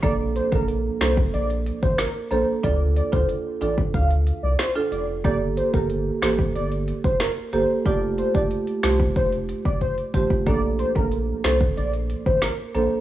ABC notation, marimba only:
X:1
M:4/4
L:1/16
Q:1/4=92
K:Bb
V:1 name="Marimba"
[B,DA] z2 [B,DA]3 [B,DA]2 z6 [B,DA] z | [DFA] z2 [DFA]3 [DFA]2 z4 z [DFA] z2 | [B,GA] z2 [B,GA]3 [B,GA]2 z6 [B,GA] z | [A,FG] z2 [A,FG]3 [A,FG]2 z6 [A,FG] z |
[B,DA] z2 [B,DA]3 [B,DA]2 z6 [B,DA] z |]